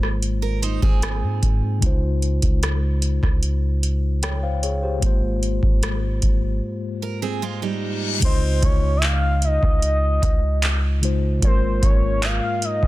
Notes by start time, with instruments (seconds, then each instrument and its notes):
Already playing: 808-style bass G#1, tine electric piano G#2 G#3 A#3 F4 C5
0.03 cross-stick
0.23 closed hi-hat
0.42 steel-string acoustic guitar A#4
0.62 steel-string acoustic guitar D#4 C5, closed hi-hat
0.82 808-style bass G#1, steel-string acoustic guitar C4 G#4, kick
1.02 cross-stick, closed hi-hat
1.22 808-style bass G#2
1.43 808-style bass G#2, kick, closed hi-hat
1.79 808-style bass C#2, tine electric piano C#3 G#3 D#4, kick, closed hi-hat
1.85 tine electric piano F4 C5
2.22 closed hi-hat
2.42 808-style bass C#2, kick, closed hi-hat
2.63 cross-stick, closed hi-hat
3.02 closed hi-hat
3.23 808-style bass C#2, kick, cross-stick
3.43 closed hi-hat
3.83 closed hi-hat
4.23 tine electric piano C#5 G5, cross-stick, closed hi-hat
4.43 tine electric piano C5 F5
4.63 tine electric piano G#4 C#5, closed hi-hat
4.83 tine electric piano G4 C5
4.99 808-style bass G#1, tine electric piano G#2 G#3 A#3, kick, closed hi-hat
5.05 tine electric piano F4 C5
5.43 closed hi-hat
5.63 808-style bass G#1, kick
5.83 cross-stick, closed hi-hat
6.22 808-style bass G#1, kick, closed hi-hat
6.62 reverse cymbal
7.02 steel-string acoustic guitar A#4
7.22 steel-string acoustic guitar C4 G#4
7.42 steel-string acoustic guitar G#3 F4
7.62 steel-string acoustic guitar G3 D#4
8.19 808-style bass C#2, tine electric piano C#3 G#3 D#4, kick, closed hi-hat, crash
8.24 tine electric piano F4 D#5, soft synth lead C5
8.63 808-style bass C#2, soft synth lead C#5, kick, closed hi-hat
8.97 soft synth lead E5
9.02 soft synth lead F5, clap, closed hi-hat
9.42 soft synth lead D#5, closed hi-hat
9.63 808-style bass C#2, kick
9.82 closed hi-hat
10.22 808-style bass C#2, kick, closed hi-hat
10.63 clap, closed hi-hat
11.01 tine electric piano C#3 G#3 D#4 F4 C5, closed hi-hat
11.39 808-style bass G#1, tine electric piano G#2 G#3 A#3, kick, closed hi-hat
11.44 tine electric piano F4 A#4, soft synth lead C5
11.83 808-style bass G#1, soft synth lead C#5, kick, closed hi-hat
12.23 soft synth lead F5, clap, closed hi-hat
12.62 soft synth lead D#5, closed hi-hat
12.83 808-style bass G#2, kick